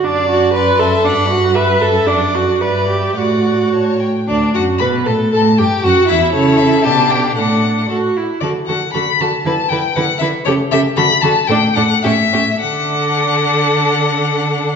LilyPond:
<<
  \new Staff \with { instrumentName = "Violin" } { \time 2/4 \key d \major \tempo 4 = 116 a''4 c'''4 | b''4 b''4 | fis''4 e''4 | fis''4 a''8 g''8 |
d''8 fis''8 b''8 a''8 | a''8 g''8 fis''8 e''8 | cis''8 e''8 a''8 g''8 | fis''4 r4 |
d''8 fis''8 b''8 a''8 | a''8 g''8 fis''8 e''8 | cis''8 e''8 b''8 a''8 | g''8 fis''8 e''4 |
fis''2~ | fis''2 | }
  \new Staff \with { instrumentName = "Violin" } { \time 2/4 \key d \major d''4 d''8 e''8 | fis''4 e''4 | d''4 d''4 | d''4 cis''8 r8 |
d'8 fis'8 b'8 a'8 | a'8 g'8 fis'8 e'8 | a'4 g'4 | a'4 a'8 r8 |
a'8 a'8 a'8 a'8 | b'8 b'8 b'8 b'8 | a'8 a'8 a'8 a'8 | a'8 a'8 g'8 g'8 |
a'2~ | a'2 | }
  \new Staff \with { instrumentName = "Viola" } { \time 2/4 \key d \major d'8 fis'8 b'8 a'8 | d'8 fis'8 b'8 a'8 | d'8 fis'8 b'8 g'8 | fis'4. r8 |
d'8 fis'8 b'8 a'8 | a'8 g'8 fis'8 e'8 | e'4 d'4 | d'4 fis'8 e'8 |
fis'8 fis'8 fis'8 fis'8 | e'8 e'8 e'8 e'8 | g'8 g'8 fis'8 fis'8 | d'8 d'8 cis'8 cis'8 |
d'2~ | d'2 | }
  \new Staff \with { instrumentName = "Cello" } { \clef bass \time 2/4 \key d \major fis,2 | g,2 | fis,4 g,4 | a,4. r8 |
d,8 fis,8 b,8 a,8 | a,8 g,8 fis,8 e,8 | cis4 b,4 | a,4 a,8 r8 |
d8 d8 d8 d8 | d8 d8 d8 d8 | cis8 cis8 d8 d8 | a,8 a,8 a,8 a,8 |
d2~ | d2 | }
>>